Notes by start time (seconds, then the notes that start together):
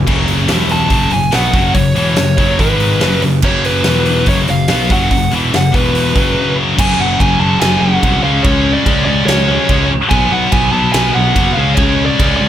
0.06 F#1 F#2 C#3 F#3, kick, crash
0.28 open hi-hat
0.48 E1 E2 B2 E3, snare, open hi-hat
0.69 A5, open hi-hat
0.89 F#1 F#2 C#3 F#3, kick, open hi-hat
1.11 F#1 F#2 C#3 G#5, open hi-hat
1.31 B1 B2 F#3 B3 F#5, snare, open hi-hat
1.53 F#1 F#2 C#3 F#3, kick, open hi-hat
1.74 F#1 F#2 C#3 C#5, kick, open hi-hat
1.95 E1 E2 B2 E3, open hi-hat
2.16 F#1 F#2 C#3 C#5, snare, open hi-hat
2.37 F#1 F#2 C#3 F#3, kick, open hi-hat
2.59 G#1 G#2 D#3 G#3 B4, kick, open hi-hat
2.80 open hi-hat
3.01 F#1 F#2 C#3 F#3, snare, open hi-hat
3.22 F#1 F#2 C#3, open hi-hat
3.42 F#1 F#2 C#3 F#3 C#5, kick, crash
3.64 B4, open hi-hat
3.84 E1 E2 B2 E3, snare, open hi-hat
4.05 open hi-hat
4.26 F#1 F#2 C#3 F#3 C#5, kick, open hi-hat
4.47 F#1 F#2 C#3 F5, open hi-hat
4.68 B1 B2 F#3 B3 F5, snare, open hi-hat
4.89 F#1 F#2 C#3 F#3 F#5, kick, open hi-hat
5.10 F#1 F#2 C#3, kick, open hi-hat
5.31 E1 E2 B2 E3, open hi-hat
5.52 F#1 F#2 C#3 F#5, snare, open hi-hat
5.72 E1 E2 B2 E3 B4, kick, open hi-hat
5.95 open hi-hat
6.14 F#1 F#2 C#3 F#3, kick, open hi-hat
6.76 F#1 F#2 C#3 F#3, kick, crash
6.80 G#5
6.99 F#1 F#5
7.20 F#1 G#5, kick, crash
7.39 F#1 F#2 C#3 F#3 A5
7.60 F#1 G#5, snare, crash
7.81 F#1 F#5
8.03 C2 F#2 C#3 F#3, kick, crash
8.23 C#2 C#3 G#3 C#4 F5
8.43 C#2 C#5, kick, crash
8.73 D5
8.85 C#2 C#3 G#3 C#4, kick, crash
9.05 C#2 D5
9.26 C#2 C#5, snare, crash
9.48 C#3 G#3 C#4
9.68 C#2 C#3 G#3 C#4, kick, crash
10.09 B1 B2 F#3 B3 G#5, kick, crash
10.31 B1 F#5
10.52 B1 G#5, kick, crash
10.72 B1 B2 F#3 B3 A5
10.93 B1 G#5, snare, crash
11.14 B1 F#5
11.35 F#1 B2 F#3 B3, kick, crash
11.54 C#2 C#3 F5
11.58 G#3 C#4
11.75 C#2 C#5, kick, crash
12.06 D5
12.19 C#2 C#3 G#3 C#4, kick, crash
12.37 D5
12.41 C#2